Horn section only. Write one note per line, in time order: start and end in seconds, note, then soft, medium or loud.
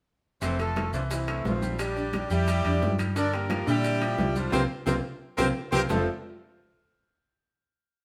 0.42 0.58 C4 medium
0.42 0.58 A4 medium
0.42 0.58 C5 medium
0.60 0.91 A3 medium
0.60 0.91 F4 medium
0.60 0.91 A4 medium
0.93 1.01 F3 medium
0.93 1.02 D4 medium
0.93 1.01 F4 medium
1.11 1.43 E3 medium
1.11 1.43 C4 medium
1.11 1.43 E4 medium
1.45 1.77 F3 medium
1.45 1.77 C4 medium
1.45 1.77 F4 medium
1.79 2.27 G3 medium
1.79 2.27 D4 medium
1.79 2.27 G4 medium
2.31 2.95 G3 loud
2.31 2.95 E4 medium
2.31 2.95 G4 loud
3.17 3.32 D4 medium
3.17 3.32 A#4 medium
3.17 3.32 D5 loud
3.34 3.68 A#3 medium
3.34 3.67 G4 medium
3.34 3.68 A#4 medium
3.68 4.32 G3 loud
3.68 4.32 E4 medium
3.68 4.32 G4 loud
4.36 4.53 F3 medium
4.36 4.53 D4 medium
4.36 4.53 F4 medium
4.52 4.61 C4 medium
4.52 4.61 G4 medium
4.52 4.61 A#4 medium
4.52 4.61 C5 medium
4.86 4.95 C4 medium
4.86 4.95 G4 medium
4.86 4.95 A#4 medium
4.86 4.95 C5 medium
5.37 5.46 C4 medium
5.37 5.46 G4 medium
5.37 5.46 A#4 medium
5.37 5.46 C5 medium
5.72 5.80 C4 medium
5.72 5.81 G4 loud
5.72 5.80 A#4 loud
5.72 5.80 C5 medium
5.88 6.05 A3 medium
5.88 6.05 A4 medium